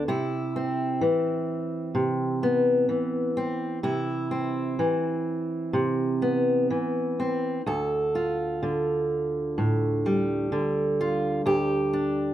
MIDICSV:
0, 0, Header, 1, 2, 480
1, 0, Start_track
1, 0, Tempo, 938967
1, 40, Time_signature, 4, 2, 24, 8
1, 1960, Tempo, 955414
1, 5320, Tempo, 934579
1, 6253, End_track
2, 0, Start_track
2, 0, Title_t, "Steel-string acoustic guitar"
2, 0, Program_c, 0, 25
2, 0, Note_on_c, 0, 59, 52
2, 42, Note_on_c, 0, 48, 66
2, 44, Note_on_c, 0, 64, 58
2, 57, Note_off_c, 0, 59, 0
2, 286, Note_on_c, 0, 60, 53
2, 517, Note_off_c, 0, 48, 0
2, 518, Note_on_c, 0, 52, 57
2, 995, Note_on_c, 0, 48, 62
2, 1242, Note_on_c, 0, 59, 52
2, 1474, Note_off_c, 0, 52, 0
2, 1476, Note_off_c, 0, 48, 0
2, 1476, Note_on_c, 0, 52, 57
2, 1716, Note_off_c, 0, 60, 0
2, 1722, Note_on_c, 0, 60, 54
2, 1932, Note_off_c, 0, 60, 0
2, 1933, Note_off_c, 0, 59, 0
2, 1955, Note_off_c, 0, 64, 0
2, 1959, Note_on_c, 0, 48, 63
2, 1961, Note_on_c, 0, 64, 61
2, 2199, Note_on_c, 0, 60, 47
2, 2437, Note_off_c, 0, 48, 0
2, 2438, Note_off_c, 0, 52, 0
2, 2440, Note_on_c, 0, 52, 55
2, 2914, Note_on_c, 0, 48, 59
2, 3159, Note_on_c, 0, 59, 47
2, 3396, Note_off_c, 0, 52, 0
2, 3399, Note_off_c, 0, 48, 0
2, 3402, Note_on_c, 0, 52, 54
2, 3643, Note_off_c, 0, 60, 0
2, 3649, Note_on_c, 0, 60, 51
2, 3855, Note_off_c, 0, 52, 0
2, 3855, Note_off_c, 0, 59, 0
2, 3857, Note_off_c, 0, 60, 0
2, 3883, Note_off_c, 0, 64, 0
2, 3884, Note_on_c, 0, 38, 65
2, 3888, Note_on_c, 0, 69, 55
2, 4129, Note_on_c, 0, 65, 48
2, 4367, Note_on_c, 0, 50, 54
2, 4846, Note_on_c, 0, 45, 55
2, 5087, Note_on_c, 0, 55, 51
2, 5313, Note_off_c, 0, 50, 0
2, 5319, Note_on_c, 0, 50, 57
2, 5321, Note_off_c, 0, 45, 0
2, 5563, Note_off_c, 0, 65, 0
2, 5569, Note_on_c, 0, 65, 53
2, 5774, Note_off_c, 0, 69, 0
2, 5775, Note_off_c, 0, 65, 0
2, 5794, Note_off_c, 0, 38, 0
2, 5800, Note_on_c, 0, 38, 65
2, 5804, Note_on_c, 0, 67, 62
2, 6045, Note_on_c, 0, 62, 48
2, 6253, Note_off_c, 0, 38, 0
2, 6253, Note_off_c, 0, 50, 0
2, 6253, Note_off_c, 0, 55, 0
2, 6253, Note_off_c, 0, 62, 0
2, 6253, Note_off_c, 0, 67, 0
2, 6253, End_track
0, 0, End_of_file